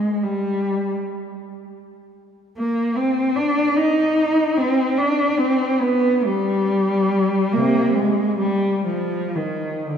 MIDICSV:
0, 0, Header, 1, 2, 480
1, 0, Start_track
1, 0, Key_signature, -3, "minor"
1, 0, Tempo, 792602
1, 130, Time_signature, 6, 3, 24, 8
1, 2047, Tempo, 816327
1, 3487, Tempo, 855920
1, 4927, Tempo, 961538
1, 5407, Tempo, 1036269
1, 5694, End_track
2, 0, Start_track
2, 0, Title_t, "Cello"
2, 0, Program_c, 0, 42
2, 0, Note_on_c, 0, 56, 46
2, 132, Note_off_c, 0, 56, 0
2, 136, Note_on_c, 0, 55, 50
2, 606, Note_off_c, 0, 55, 0
2, 1559, Note_on_c, 0, 58, 55
2, 1787, Note_off_c, 0, 58, 0
2, 1792, Note_on_c, 0, 60, 54
2, 2033, Note_on_c, 0, 62, 64
2, 2039, Note_off_c, 0, 60, 0
2, 2276, Note_off_c, 0, 62, 0
2, 2277, Note_on_c, 0, 63, 65
2, 2749, Note_on_c, 0, 60, 60
2, 2764, Note_off_c, 0, 63, 0
2, 2988, Note_on_c, 0, 62, 62
2, 2991, Note_off_c, 0, 60, 0
2, 3222, Note_on_c, 0, 60, 62
2, 3231, Note_off_c, 0, 62, 0
2, 3466, Note_on_c, 0, 59, 68
2, 3480, Note_off_c, 0, 60, 0
2, 3720, Note_on_c, 0, 55, 65
2, 3721, Note_off_c, 0, 59, 0
2, 4439, Note_off_c, 0, 55, 0
2, 4441, Note_on_c, 0, 58, 63
2, 4447, Note_on_c, 0, 48, 51
2, 4665, Note_off_c, 0, 48, 0
2, 4671, Note_on_c, 0, 56, 53
2, 4679, Note_off_c, 0, 58, 0
2, 4923, Note_off_c, 0, 56, 0
2, 4923, Note_on_c, 0, 55, 55
2, 5153, Note_off_c, 0, 55, 0
2, 5158, Note_on_c, 0, 53, 51
2, 5401, Note_off_c, 0, 53, 0
2, 5404, Note_on_c, 0, 51, 45
2, 5646, Note_off_c, 0, 51, 0
2, 5651, Note_on_c, 0, 50, 42
2, 5694, Note_off_c, 0, 50, 0
2, 5694, End_track
0, 0, End_of_file